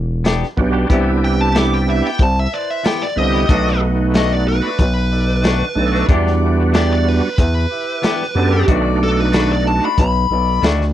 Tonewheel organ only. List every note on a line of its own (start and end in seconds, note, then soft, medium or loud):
0.57 0.87 B3 medium
0.57 0.88 D4 medium
0.57 0.88 F#4 medium
0.57 0.88 G4 medium
0.89 2.10 B3 medium
0.89 2.10 D4 medium
0.89 2.11 E4 medium
0.89 2.11 G4 medium
3.16 3.47 D3 medium
3.16 3.47 B3 medium
3.16 3.47 E4 medium
3.16 3.47 G4 medium
3.49 4.70 A3 medium
3.49 4.70 B3 medium
3.49 4.70 D#4 medium
3.49 4.71 F#4 medium
5.75 6.06 A3 medium
5.75 6.06 D4 medium
5.75 6.07 D#4 medium
5.75 6.07 A4 loud
6.08 7.29 G3 medium
6.08 7.29 B3 medium
6.08 7.30 D4 medium
6.08 7.30 F#4 medium
8.35 8.66 B3 medium
8.35 8.66 D4 medium
8.35 8.65 G4 loud
8.35 8.66 A4 loud
8.67 9.89 A3 medium
8.67 9.89 D4 medium
8.67 9.89 D#4 medium
8.67 9.90 F#4 medium